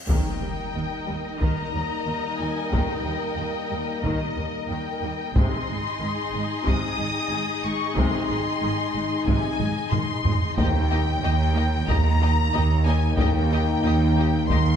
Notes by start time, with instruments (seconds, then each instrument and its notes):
0.07 cello section D#2, double bass section D#2, viola section D#3 D#4, french horn section G3 A#3, violin section A#4 D#5 G5, taiko, impact
0.41 cello section D#2, double bass section D#2, viola section G3
0.75 double bass section D#2, cello section D#2, viola section D#3
1.07 double bass section D#2, cello section D#2, viola section G3
1.39 double bass section D#2, cello section D#2, viola section D#3, violin section A#5, taiko
1.73 double bass section D#2, cello section D#2, viola section G3
2.06 double bass section D#2, cello section D#2, viola section D#3
2.39 double bass section D#2, cello section D#2, viola section G3, violin section G#5
2.72 double bass section D#2, cello section D#2, viola section D#3, violin section G5, taiko
3.04 double bass section D#2, cello section D#2, viola section G3
3.38 double bass section D#2, cello section D#2, viola section D#3
3.71 double bass section D#2, cello section D#2, viola section G3
4.03 double bass section D#2, cello section D#2, viola section D#3, violin section D#5, taiko
4.36 double bass section D#2, cello section D#2, viola section G3
4.68 double bass section D#2, cello section D#2, violin section G5
4.73 viola section D#3
5.01 double bass section D#2, cello section D#2, viola section G3
5.34 double bass section G#1, cello section G#2, viola section C3 D#4, french horn section G#3 D#4, violin section G#4 D#5 C6, taiko
5.68 double bass section G#1, cello section G#2, viola section G#3
6.00 double bass section G#1, cello section G#2, viola section D#3
6.32 double bass section G#1, cello section G#2, viola section G#3
6.65 double bass section G#1, cello section G#2, viola section C3, violin section D#6, taiko
6.97 double bass section G#1, cello section G#2, viola section G#3
7.30 double bass section G#1, cello section G#2, viola section D#3
7.64 double bass section G#1, cello section G#2, viola section G#3, violin section C#6
7.96 double bass section G#1, cello section G#2, viola section C3, violin section C6, taiko
8.29 double bass section G#1, cello section G#2, viola section G#3
8.62 double bass section G#1, cello section G#2, viola section D#3
8.94 double bass section G#1, cello section G#2, viola section G#3
9.26 double bass section G#1, cello section G#2, viola section C3, violin section G#5, taiko
9.59 double bass section G#1, cello section G#2, viola section G#3, taiko low-mid
9.91 double bass section G#1, cello section G#2, viola section D#3, violin section C6, taiko low-mid
10.24 double bass section G#1, cello section G#2, viola section G#3, taiko low
10.57 double bass section D#2, cello section D#2, viola section A#3 D#4, french horn section A#3 D#4, violin section G4 D#5 G5, taiko
10.91 viola section A#3 D#4, violin section G4 D#5
11.22 double bass section D#2, cello section D#2, viola section A#3 D#4, violin section G4 D#5
11.55 viola section A#3 D#4, violin section G4 D#5
11.87 double bass section D#2, cello section D#2, viola section A#3 D#4, violin section G4 D#5 A#5, taiko
12.21 viola section A#3 D#4, violin section G4 D#5
12.53 double bass section D#2, cello section D#2, viola section A#3 D#4, violin section G4 D#5
12.85 viola section A#3 D#4, violin section G4 D#5 G#5
13.18 double bass section D#2, cello section D#2, viola section A#3 D#4, violin section G4 D#5 G5, taiko
13.52 viola section A#3 D#4, violin section G4 D#5
13.84 double bass section D#2, cello section D#2, viola section A#3 D#4, violin section G4 D#5
14.17 viola section A#3 D#4, violin section G4 D#5
14.49 double bass section D#2, cello section D#2, viola section A#3 D#4, violin section G4 D#5 C6, taiko